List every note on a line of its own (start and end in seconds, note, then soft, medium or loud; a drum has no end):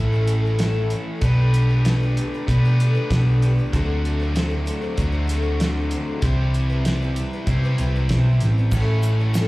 0.00 0.93 A1 medium
0.00 1.19 A2 medium
0.00 1.20 E3 medium
0.00 0.14 A3 soft
0.00 1.21 A3 medium
0.00 0.14 C#4 soft
0.00 1.20 C#4 medium
0.00 0.13 E4 medium
0.00 1.21 E4 medium
0.00 0.12 A4 medium
0.00 1.24 A4 medium
0.13 0.26 A3 soft
0.13 0.27 C#4 soft
0.13 0.28 E4 medium
0.13 0.29 A4 medium
0.27 0.44 A3 medium
0.27 0.44 C#4 medium
0.27 0.45 E4 medium
0.27 0.44 A4 medium
0.27 closed hi-hat medium
0.45 0.59 A3 soft
0.45 0.59 C#4 soft
0.45 0.60 E4 medium
0.45 0.60 A4 soft
0.59 0.91 A2 medium
0.59 0.92 E3 medium
0.59 0.89 A3 medium
0.59 0.90 C#4 medium
0.59 0.91 E4 medium
0.59 0.92 A4 medium
0.59 snare loud
0.59 closed hi-hat medium
0.90 1.22 A3 medium
0.90 1.23 C#4 medium
0.90 1.23 E4 medium
0.90 1.24 A4 medium
0.90 closed hi-hat soft
1.21 2.19 B1 medium
1.21 1.70 B2 medium
1.21 1.70 G3 medium
1.21 1.70 A3 medium
1.21 2.46 B3 medium
1.21 2.48 D4 medium
1.21 1.70 D4 medium
1.21 2.46 G4 medium
1.21 1.69 G4 medium
1.21 2.47 B4 medium
1.21 1.68 B4 medium
1.21 kick loud
1.21 closed hi-hat medium
1.54 closed hi-hat medium
1.69 1.85 A3 soft
1.69 1.85 D4 soft
1.69 1.86 G4 soft
1.69 1.85 B4 medium
1.85 2.01 B2 medium
1.85 2.01 G3 medium
1.85 2.01 A3 medium
1.85 2.02 D4 medium
1.85 2.02 G4 medium
1.85 2.01 B4 medium
1.85 snare loud
1.85 closed hi-hat medium
2.02 2.17 A3 soft
2.02 2.18 D4 medium
2.02 2.18 G4 medium
2.02 2.17 B4 medium
2.17 2.33 A3 medium
2.17 2.33 D4 medium
2.17 2.34 G4 medium
2.17 closed hi-hat medium
2.21 2.33 B4 medium
2.34 2.65 A3 soft
2.34 2.65 D4 medium
2.34 2.64 G4 medium
2.34 2.63 B4 medium
2.47 2.96 B2 medium
2.47 3.71 B3 medium
2.47 3.71 D4 medium
2.47 3.72 G4 medium
2.47 3.72 B4 medium
2.47 kick medium
2.47 closed hi-hat medium
2.65 2.78 A3 soft
2.65 2.80 D4 soft
2.65 2.80 G4 medium
2.65 2.80 B4 medium
2.80 2.95 A3 medium
2.80 2.96 D4 medium
2.80 2.94 G4 medium
2.80 2.94 B4 medium
2.80 closed hi-hat medium
2.95 3.12 A3 soft
2.95 3.11 D4 soft
2.95 3.10 G4 medium
2.95 3.10 B4 medium
3.10 3.59 B1 medium
3.10 3.42 B2 medium
3.10 3.42 G3 medium
3.10 3.41 A3 medium
3.10 3.42 D4 medium
3.10 3.43 G4 medium
3.10 3.43 B4 medium
3.10 kick medium
3.10 snare loud
3.10 closed hi-hat medium
3.42 3.58 A3 medium
3.42 3.58 D4 medium
3.42 3.58 G4 medium
3.42 3.57 B4 medium
3.42 closed hi-hat medium
3.58 3.72 A3 soft
3.58 3.74 D4 soft
3.58 3.74 G4 soft
3.58 3.73 B4 medium
3.73 4.70 D2 loud
3.73 4.95 D3 medium
3.73 4.20 D3 medium
3.73 4.96 F#3 medium
3.73 4.20 A3 medium
3.73 4.96 A3 medium
3.73 4.20 C4 medium
3.73 4.97 D4 medium
3.73 4.21 F#4 medium
3.73 4.97 F#4 loud
3.73 4.99 C5 loud
3.73 4.18 C5 medium
3.73 kick loud
3.73 closed hi-hat medium
4.05 closed hi-hat medium
4.20 4.35 C4 soft
4.20 4.35 F#4 soft
4.20 4.35 C5 medium
4.35 4.51 D3 medium
4.35 4.51 A3 medium
4.35 4.51 C4 medium
4.35 4.50 F#4 medium
4.35 4.49 C5 loud
4.35 snare loud
4.35 closed hi-hat medium
4.50 4.66 C4 soft
4.50 4.67 F#4 soft
4.50 4.66 C5 medium
4.66 4.82 A3 medium
4.66 4.83 C4 medium
4.66 4.81 F#4 medium
4.66 4.80 C5 medium
4.66 closed hi-hat medium
4.81 5.13 C4 soft
4.81 5.11 F#4 soft
4.81 5.11 C5 medium
4.96 5.94 D2 medium
4.96 6.20 D3 medium
4.96 6.21 F#3 medium
4.96 6.21 A3 medium
4.96 6.21 D4 medium
4.96 6.21 F#4 medium
4.96 6.22 C5 medium
4.96 kick medium
4.96 closed hi-hat medium
5.12 5.28 C4 soft
5.12 5.28 F#4 soft
5.12 5.28 C5 medium
5.27 5.44 A3 medium
5.27 5.44 C4 medium
5.27 5.43 F#4 medium
5.27 5.41 C5 medium
5.27 closed hi-hat medium
5.42 5.61 C4 soft
5.42 5.60 F#4 soft
5.42 5.59 C5 medium
5.60 5.92 D3 medium
5.60 5.90 A3 medium
5.60 5.90 C4 medium
5.60 5.92 F#4 medium
5.60 5.93 C5 medium
5.60 snare loud
5.60 closed hi-hat medium
5.91 6.22 A3 medium
5.91 6.22 C4 medium
5.91 6.22 F#4 medium
5.91 6.24 C5 medium
5.91 closed hi-hat medium
6.21 7.19 C2 medium
6.21 7.45 C3 medium
6.21 6.69 C3 medium
6.21 6.69 E3 medium
6.21 7.45 G3 medium
6.21 6.69 G3 medium
6.21 7.46 C4 medium
6.21 6.70 C4 medium
6.21 6.70 E4 medium
6.21 7.46 E4 medium
6.21 7.46 G4 medium
6.21 7.47 C5 medium
6.21 kick loud
6.21 closed hi-hat medium
6.54 closed hi-hat soft
6.69 6.86 G3 soft
6.69 6.86 C4 soft
6.69 6.86 E4 soft
6.69 6.85 B4 medium
6.85 7.01 C3 medium
6.85 7.02 E3 medium
6.85 7.02 G3 medium
6.85 7.02 C4 medium
6.85 7.01 E4 medium
6.85 7.01 B4 medium
6.85 snare loud
6.85 closed hi-hat medium
7.02 7.16 G3 soft
7.02 7.17 C4 soft
7.02 7.17 E4 medium
7.02 7.17 B4 medium
7.16 7.33 G3 medium
7.16 7.33 C4 medium
7.16 7.32 E4 medium
7.16 7.32 B4 medium
7.16 closed hi-hat medium
7.33 7.65 G3 soft
7.33 7.65 C4 soft
7.33 7.64 E4 medium
7.33 7.63 B4 medium
7.47 8.70 C3 medium
7.47 7.72 C3 medium
7.47 8.70 G3 medium
7.47 8.71 C4 medium
7.47 8.71 E4 medium
7.47 8.72 G4 medium
7.47 8.72 C5 medium
7.47 kick medium
7.47 closed hi-hat medium
7.64 7.78 G3 soft
7.64 7.78 C4 soft
7.64 7.79 E4 medium
7.64 7.79 B4 medium
7.78 8.07 C2 medium
7.78 7.95 G3 medium
7.78 7.95 C4 medium
7.78 7.95 E4 medium
7.78 7.94 B4 medium
7.78 closed hi-hat medium
7.95 8.11 G3 soft
7.95 8.11 C4 soft
7.95 8.11 E4 soft
7.95 8.11 B4 medium
8.09 8.38 B1 medium
8.09 8.42 E3 medium
8.09 8.41 G3 medium
8.09 8.42 C4 medium
8.09 8.43 E4 medium
8.09 kick medium
8.09 snare medium
8.09 closed hi-hat medium
8.40 8.70 A1 medium
8.40 8.58 G3 medium
8.40 8.58 C4 medium
8.40 8.58 E4 medium
8.40 closed hi-hat medium
8.44 8.57 B4 medium
8.58 8.74 G3 soft
8.58 8.74 C4 soft
8.58 8.74 E4 soft
8.58 8.73 B4 soft
8.71 9.48 A1 medium
8.71 9.48 A2 medium
8.71 9.20 A2 medium
8.71 9.20 E3 medium
8.71 9.48 A3 medium
8.71 9.20 A3 medium
8.71 9.48 C#4 medium
8.71 9.20 C#4 medium
8.71 9.48 E4 medium
8.71 9.48 A4 loud
8.71 kick loud
8.71 crash medium
8.71 shaker medium
8.75 9.20 E4 medium
8.75 9.18 C#5 medium
9.03 closed hi-hat medium
9.03 shaker medium
9.20 9.34 A3 soft
9.20 9.34 C#4 soft
9.20 9.35 E4 soft
9.20 9.34 C#5 soft
9.34 9.48 A2 medium
9.34 9.48 E3 medium
9.34 9.48 A3 medium
9.34 9.48 C#4 medium
9.34 9.48 E4 medium
9.34 9.48 C#5 medium
9.34 snare loud
9.34 closed hi-hat medium
9.34 shaker medium